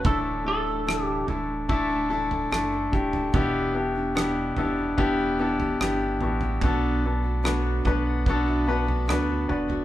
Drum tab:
SD |----r-------r---|----r-------r---|----r-------r---|
FT |o-----o-o--o---o|o-----o-o--o--oo|o-----o-o--o--oo|
BD |o-------o-----o-|o-------o-------|o-----o-o-------|